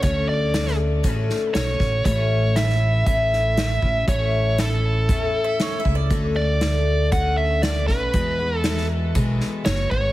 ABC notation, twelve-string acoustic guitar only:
X:1
M:4/4
L:1/8
Q:1/4=118
K:A
V:1 name="Twelve-string acoustic guitar"
[D,A,CF]2 [D,A,CF]2 [D,A,CF]2 [D,CF] [A,CF] | [A,,E,A,CE]2 [E,A,CE]2 [A,,E,A,CE]2 [E,A,] [A,CE] | [A,,E,A,CE]2 [E,A,CE]2 [A,,E,A,CE]2 [E,A,CE] [A,CE] | [D,A,CF] [A,CF] [D,A,F]2 [D,A,CF]2 [D,A,CF] [A,CF] |
[E,,B,,E,G,B,F] [E,G,B,F] [E,G,B,F]2 [E,,B,,E,G,B,F]2 [E,G,B,F] [E,G,B,F] |]